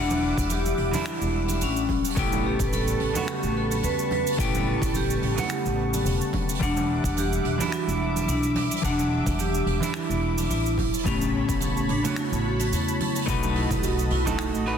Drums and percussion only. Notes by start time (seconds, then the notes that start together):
0.10 high conga, cabasa
0.38 kick, open hi-hat, cabasa
0.49 open hi-hat, high conga, cabasa
0.66 cabasa
0.77 open hi-hat
0.94 open hi-hat, high conga, low conga, cabasa
1.05 finger snap, open hi-hat, cabasa
1.22 cabasa
1.48 open hi-hat, high conga, cabasa
1.61 open hi-hat, cabasa
1.76 cabasa
1.89 kick, open hi-hat, high conga
2.04 open hi-hat, cabasa
2.10 open hi-hat
2.17 kick, open hi-hat, cabasa
2.32 high conga, cabasa
2.59 kick, open hi-hat, cabasa
2.72 open hi-hat, high conga, cabasa
2.88 cabasa
3.00 open hi-hat
3.15 open hi-hat, high conga, low conga, cabasa
3.28 finger snap, cabasa
3.43 cabasa
3.71 open hi-hat, high conga, cabasa
3.83 open hi-hat, cabasa
3.99 cabasa
4.11 open hi-hat, high conga
4.27 open hi-hat, cabasa
4.32 open hi-hat
4.39 kick, open hi-hat, cabasa
4.55 high conga, cabasa
4.82 kick, open hi-hat, cabasa
4.94 open hi-hat, high conga, cabasa
5.10 cabasa
5.22 open hi-hat
5.37 open hi-hat, high conga, low conga, cabasa
5.50 finger snap, open hi-hat, cabasa
5.66 cabasa
5.93 open hi-hat, high conga, cabasa
6.06 open hi-hat, cabasa
6.21 cabasa
6.33 kick, open hi-hat, high conga
6.49 open hi-hat, cabasa
6.55 open hi-hat
6.60 kick, open hi-hat, cabasa
6.77 high conga, cabasa
7.04 kick, open hi-hat, cabasa
7.17 open hi-hat, high conga, cabasa
7.33 cabasa
7.45 open hi-hat
7.60 open hi-hat, high conga, low conga, cabasa
7.72 finger snap, cabasa
7.89 cabasa
8.16 open hi-hat, high conga, cabasa
8.28 open hi-hat, cabasa
8.43 cabasa
8.55 open hi-hat, high conga
8.71 open hi-hat, cabasa
8.76 open hi-hat
8.83 kick, cabasa
8.99 high conga, cabasa
9.26 kick, open hi-hat, cabasa
9.39 open hi-hat, high conga, cabasa
9.54 cabasa
9.67 open hi-hat
9.82 open hi-hat, high conga, low conga, cabasa
9.94 finger snap, open hi-hat, cabasa
10.11 cabasa
10.38 open hi-hat, high conga, cabasa
10.50 open hi-hat, cabasa
10.66 cabasa
10.78 kick, open hi-hat, high conga
10.93 open hi-hat, cabasa
10.99 open hi-hat
11.06 kick, open hi-hat, cabasa
11.21 high conga, cabasa
11.49 kick, open hi-hat, cabasa
11.60 open hi-hat, high conga, cabasa
11.77 cabasa
11.89 open hi-hat
12.04 open hi-hat, high conga, low conga, cabasa
12.16 finger snap, open hi-hat, cabasa
12.33 cabasa
12.59 open hi-hat, high conga, cabasa
12.73 open hi-hat, cabasa
12.88 cabasa
13.00 open hi-hat, high conga
13.15 open hi-hat, cabasa
13.22 open hi-hat
13.28 kick, open hi-hat, cabasa
13.43 high conga, cabasa
13.55 open hi-hat
13.71 kick, open hi-hat, low conga, cabasa
13.83 open hi-hat, high conga, cabasa
13.99 cabasa
14.10 open hi-hat
14.26 kick, open hi-hat, high conga, low conga, cabasa
14.38 finger snap, open hi-hat, cabasa
14.54 cabasa
14.66 open hi-hat